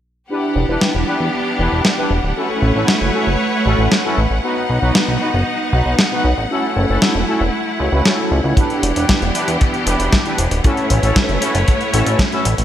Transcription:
0.30 string section E3 B3 D4 G4 F#5, analog polysynth D4 E4 G4 B4
0.56 analog synth bass E1
0.69 analog synth bass E1, analog polysynth D4 E4 G4 B4
0.81 snare
0.95 analog synth bass E1
1.07 analog polysynth D4 E4 G4 B4
1.20 analog synth bass E2
1.59 analog synth bass E1, analog polysynth D4 E4 G4 B4
1.72 analog synth bass E1
1.85 snare
1.97 analog polysynth D4 E4 G4 B4
2.11 analog synth bass E1
2.23 analog synth bass D1
2.36 string section A3 E4 B4 C#5, analog polysynth C#4 E4 F#4 A4
2.62 analog synth bass A1
2.75 analog synth bass A1, analog polysynth C#4 E4 F#4 A4
2.88 snare
3.01 analog synth bass F#1
3.14 analog polysynth C#4 E4 F#4 A4
3.27 analog synth bass F#1
3.66 analog synth bass A1, analog polysynth C#4 E4 F#4 A4
3.79 analog synth bass A1
3.92 snare
4.04 analog polysynth C#4 E4 F#4 A4
4.17 analog synth bass A1
4.30 analog synth bass A1
4.43 string section B3 D#4, analog polysynth B3 D#4 F#4 B4
4.69 analog synth bass B1
4.82 analog synth bass B1, analog polysynth B3 D#4 F#4 B4
4.95 snare
5.08 analog synth bass B1
5.21 analog polysynth B3 D#4 F#4 B4
5.34 analog synth bass F#1
5.73 analog synth bass B1, analog polysynth B3 D#4 F#4 B4
5.86 analog synth bass B1
5.99 snare
6.11 analog polysynth B3 D#4 F#4 B4
6.24 analog synth bass B1
6.37 analog synth bass A1
6.50 string section A3 E4, analog polysynth C#4 E4 F#4 A4
6.76 analog synth bass F#1
6.89 analog synth bass F#1, analog polysynth C#4 E4 F#4 A4
7.02 snare
7.15 analog synth bass E1
7.28 analog polysynth C#4 E4 F#4 A4
7.41 analog synth bass E1
7.80 analog synth bass C#2, analog polysynth C#4 E4 F#4 C#5
7.92 analog synth bass C#2, analog polysynth C#4 E4 F#4 B4
8.05 analog polysynth C#4 E4 F#4 A4, snare
8.31 analog synth bass C#2
8.44 analog synth bass C#2, analog polysynth C#4 E4 F#4 C#5
8.57 string section E3 B3 D4 G4, analog polysynth D4 E4 G4 B4, kick, closed hi-hat
8.70 closed hi-hat
8.83 analog synth bass E1, closed hi-hat
8.96 analog synth bass E1, analog polysynth D4 E4 G4 B4, closed hi-hat
9.09 kick, snare, closed hi-hat
9.22 analog synth bass E1, closed hi-hat
9.35 analog polysynth D4 E4 G4 B4, closed hi-hat
9.48 analog synth bass E2, closed hi-hat
9.61 kick, closed hi-hat
9.74 closed hi-hat
9.86 analog synth bass E1, analog polysynth D4 E4 G4 B4, closed hi-hat
10.00 analog synth bass E1, closed hi-hat
10.13 kick, snare, closed hi-hat
10.25 analog polysynth D4 E4 G4 B4, closed hi-hat
10.38 analog synth bass E1, closed hi-hat
10.51 analog synth bass D1, closed hi-hat
10.64 string section A3 E4 B4 C#5, analog polysynth C#4 E4 F#4 A4, kick, closed hi-hat
10.77 closed hi-hat
10.90 analog synth bass A1, kick, closed hi-hat
11.03 analog synth bass A1, analog polysynth C#4 E4 F#4 A4, closed hi-hat
11.16 kick, snare, closed hi-hat
11.29 analog synth bass F#1, closed hi-hat
11.42 analog polysynth C#4 E4 F#4 A4, closed hi-hat
11.55 analog synth bass F#1, closed hi-hat
11.68 kick, closed hi-hat
11.81 closed hi-hat
11.94 analog synth bass A1, analog polysynth C#4 E4 F#4 A4, closed hi-hat
12.06 analog synth bass A1, closed hi-hat
12.19 kick, snare, closed hi-hat
12.32 analog polysynth C#4 E4 F#4 A4, closed hi-hat
12.45 analog synth bass A1, closed hi-hat
12.58 analog synth bass A1, closed hi-hat

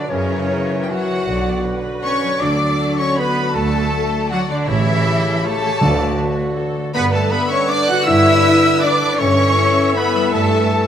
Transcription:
Already playing: harp B2 F#3 D4 F#4 B4, french horn section D3, flute D5, clarinet D5
0.09 double bass section F#2, harp F#2, cello section C#3, french horn section C#3, bassoon E3, violin section C#4 C#5, trumpet section C#4, viola section A#4, clarinet A#4, flute C#5
0.30 harp E4
0.47 harp F#4, viola section A#4
0.69 harp A#4
0.82 violin section G5
0.88 french horn section F#3, cello section F#3, trumpet section F#4, harp F#4, violin section F#4 F#5, viola section C#5, flute F#5
1.09 harp C#3
1.25 double bass section B1, harp B2, bassoon D3, clarinet F#4, viola section D5
1.45 harp D4
1.64 harp F#4, viola section B4
1.84 harp B4
2.02 french horn section C#4, cello section C#4, harp F#4, violin section C#5 C#6, trumpet section C#5, flute C#6
2.23 harp F#3
2.40 double bass section D2, bassoon D3, harp D3, cello section D4, french horn section D4, clarinet F#4, viola section A4, violin section D5 D6, trumpet section D5, flute D6
2.79 harp F#4
2.97 cello section C#4, french horn section C#4, harp A4, trumpet section C#5, violin section C#5 C#6, flute C#6
3.16 cello section B3, viola section F#4, harp F#4, trumpet section B4, violin section B4 B5, flute B5
3.20 french horn section B3
3.37 harp A3
3.52 double bass section D2, harp D3, cello section A3, french horn section A3, trumpet section A4, violin section A4 A5, flute A5
3.73 harp D4
3.92 harp F#4, viola section A4
4.12 harp A4
4.29 cello section F#3, french horn section F#3, trumpet section F#4, violin section F#4 F#5, harp F#4, viola section D5, flute F#5
4.48 cello section D3, french horn section D3, harp A3, trumpet section D4, violin section D4 D5, flute D5
4.67 double bass section A1, harp A2, bassoon C#3, cello section E3, french horn section E3, trumpet section E4, violin section E4 E5, clarinet G4, viola section C#5, flute E5
4.86 harp C#4
5.04 harp G4, viola section A4
5.38 violin section B5
5.44 french horn section A3, cello section A3, harp G4, violin section A4 A5, trumpet section A4, viola section C#5, flute A5
5.65 harp E3
5.81 double bass section D2, timpani D3, bassoon D3, harp D3, clarinet F#4, viola section D5
6.01 harp D4
6.19 viola section F#4, harp F#4
6.40 harp A4
6.58 harp F#4, viola section A4
6.77 harp A3
6.93 double bass section G2, harp G2, bassoon D3, cello section B3, french horn section B3, clarinet B4, viola section B4, trumpet section B4, violin section B4 B5, flute B5
7.12 cello section A3, french horn section A3, harp D4, trumpet section A4, violin section A4 A5, flute A5
7.30 cello section B3, french horn section B3, harp G4, trumpet section B4, violin section B4 B5, viola section E5, flute B5
7.50 cello section C#4, french horn section C#4, harp B4, trumpet section C#5, violin section C#5 C#6, flute C#6
7.68 cello section D4, french horn section D4, trumpet section D5, viola section D5, violin section D5 D6, flute D6
7.87 harp D3, cello section F#4, french horn section F#4, trumpet section F#5, violin section F#5 F#6, flute F#6
8.05 double bass section G2, harp G2, cello section E4, french horn section E4, viola section C#5, trumpet section E5, violin section E5 E6, flute E6
8.25 harp D4
8.42 harp G4, viola section B4
8.81 cello section D4, french horn section D4, harp G4, trumpet section D5, violin section D5 D6, flute D6
9.03 harp D3
9.18 double bass section G2, harp G2, bassoon E3, cello section C#4, french horn section C#4, clarinet A4, violin section C#5 C#6, trumpet section C#5, viola section C#5, flute C#6
9.39 harp E4
9.57 harp G3, viola section E5
9.77 harp A4
9.95 french horn section B3, cello section B3, trumpet section B4, violin section B4 B5, flute B5
10.15 harp G3
10.33 harp G2, double bass section G2, french horn section A3, cello section A3, violin section A4 A5, trumpet section A4, flute A5
10.52 harp E4
10.71 harp G3

